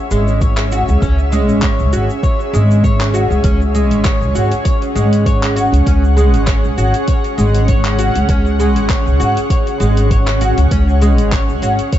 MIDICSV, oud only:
0, 0, Header, 1, 2, 480
1, 0, Start_track
1, 0, Key_signature, 4, "minor"
1, 0, Tempo, 606061
1, 807, Time_signature, 4, 2, 24, 8
1, 9493, End_track
2, 0, Start_track
2, 0, Title_t, "Oud"
2, 0, Program_c, 0, 24
2, 88, Note_on_c, 0, 56, 73
2, 317, Note_off_c, 0, 56, 0
2, 329, Note_on_c, 0, 73, 79
2, 557, Note_off_c, 0, 73, 0
2, 572, Note_on_c, 0, 66, 70
2, 695, Note_off_c, 0, 66, 0
2, 808, Note_on_c, 0, 61, 79
2, 934, Note_off_c, 0, 61, 0
2, 1047, Note_on_c, 0, 56, 74
2, 1276, Note_off_c, 0, 56, 0
2, 1290, Note_on_c, 0, 73, 78
2, 1518, Note_off_c, 0, 73, 0
2, 1528, Note_on_c, 0, 66, 75
2, 1653, Note_off_c, 0, 66, 0
2, 1769, Note_on_c, 0, 73, 69
2, 1894, Note_off_c, 0, 73, 0
2, 2008, Note_on_c, 0, 56, 67
2, 2237, Note_off_c, 0, 56, 0
2, 2249, Note_on_c, 0, 73, 78
2, 2477, Note_off_c, 0, 73, 0
2, 2486, Note_on_c, 0, 66, 67
2, 2612, Note_off_c, 0, 66, 0
2, 2726, Note_on_c, 0, 61, 80
2, 2852, Note_off_c, 0, 61, 0
2, 2967, Note_on_c, 0, 56, 72
2, 3196, Note_off_c, 0, 56, 0
2, 3206, Note_on_c, 0, 73, 80
2, 3436, Note_off_c, 0, 73, 0
2, 3447, Note_on_c, 0, 66, 74
2, 3573, Note_off_c, 0, 66, 0
2, 3683, Note_on_c, 0, 73, 74
2, 3811, Note_off_c, 0, 73, 0
2, 3924, Note_on_c, 0, 56, 70
2, 4155, Note_off_c, 0, 56, 0
2, 4167, Note_on_c, 0, 73, 81
2, 4396, Note_off_c, 0, 73, 0
2, 4404, Note_on_c, 0, 66, 69
2, 4531, Note_off_c, 0, 66, 0
2, 4645, Note_on_c, 0, 61, 75
2, 4772, Note_off_c, 0, 61, 0
2, 4884, Note_on_c, 0, 56, 69
2, 5115, Note_off_c, 0, 56, 0
2, 5127, Note_on_c, 0, 73, 78
2, 5356, Note_off_c, 0, 73, 0
2, 5368, Note_on_c, 0, 66, 72
2, 5493, Note_off_c, 0, 66, 0
2, 5607, Note_on_c, 0, 73, 79
2, 5733, Note_off_c, 0, 73, 0
2, 5843, Note_on_c, 0, 56, 71
2, 6074, Note_off_c, 0, 56, 0
2, 6086, Note_on_c, 0, 73, 84
2, 6316, Note_off_c, 0, 73, 0
2, 6327, Note_on_c, 0, 66, 76
2, 6453, Note_off_c, 0, 66, 0
2, 6569, Note_on_c, 0, 61, 81
2, 6694, Note_off_c, 0, 61, 0
2, 6808, Note_on_c, 0, 56, 76
2, 7037, Note_off_c, 0, 56, 0
2, 7045, Note_on_c, 0, 73, 78
2, 7275, Note_off_c, 0, 73, 0
2, 7284, Note_on_c, 0, 66, 77
2, 7411, Note_off_c, 0, 66, 0
2, 7525, Note_on_c, 0, 73, 76
2, 7652, Note_off_c, 0, 73, 0
2, 7761, Note_on_c, 0, 56, 76
2, 7993, Note_off_c, 0, 56, 0
2, 8005, Note_on_c, 0, 73, 79
2, 8235, Note_off_c, 0, 73, 0
2, 8247, Note_on_c, 0, 66, 69
2, 8373, Note_off_c, 0, 66, 0
2, 8484, Note_on_c, 0, 61, 82
2, 8611, Note_off_c, 0, 61, 0
2, 8727, Note_on_c, 0, 56, 74
2, 8956, Note_off_c, 0, 56, 0
2, 8967, Note_on_c, 0, 73, 79
2, 9196, Note_off_c, 0, 73, 0
2, 9208, Note_on_c, 0, 66, 74
2, 9334, Note_off_c, 0, 66, 0
2, 9447, Note_on_c, 0, 73, 71
2, 9493, Note_off_c, 0, 73, 0
2, 9493, End_track
0, 0, End_of_file